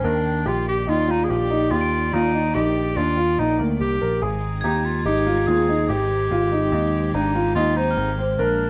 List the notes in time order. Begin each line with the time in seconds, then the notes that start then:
Already playing: G5
0.04 D#2 D#3 D4 A#4 D5
0.46 A#1 F4 G4
0.68 G4
0.87 D#2 D#4 F4
1.08 D#4 F4
1.24 G#4
1.29 A#1 F4 G4
1.50 D#4
1.71 D#2 F4 G4
1.81 D7
2.13 D#2 D#4 F4
2.34 D#4
2.55 A#1 D#4 G4
2.97 D#2 D4 F4
3.17 F4
3.38 A#1 D#4
3.59 D2 A#3
3.80 C2 G4
4.01 A#1 A#4
4.22 G#1 G#3 C4 D#4 G#4
4.61 D#2 D#4 G4 G#6
4.85 F4
5.05 G#1 D#4 G4
5.27 F4
5.47 D#2 F4 G#4
5.69 D#4
5.89 G#1 G4
6.31 G#1 F4 G4
6.52 D#4
6.72 D#2 D#4
7.14 G#1 D4 D#4
7.35 F4
7.55 D#2 D#4 F4
7.77 C4 D#4
7.91 F6
7.97 G#1
8.18 C5
8.39 A#1 G#3 A#3 D4 A#4